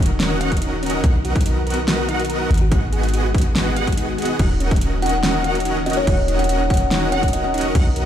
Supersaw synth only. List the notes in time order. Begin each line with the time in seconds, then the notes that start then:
Already playing: C#4 F#4 A#4 D#5 F#5
0.41 C#4 F#4 A#4 D#5 F#5
1.04 B3 F#4 A#4 D#5 F#5
2.09 B3 F#4 A#4 D#5 F#5
2.72 B3 F#4 G#4 D#5 F#5
3.76 B3 F#4 G#4 D#5 F#5
4.39 C#4 F#4 A#4 D#5 F#5
5.44 C#4 F#4 A#4 D#5 F#5
6.07 C#4 F#4 A#4 D#5 F#5
7.12 C#4 F#4 A#4 D#5 F#5
7.75 B3 F#4 A#4 D#5 F#5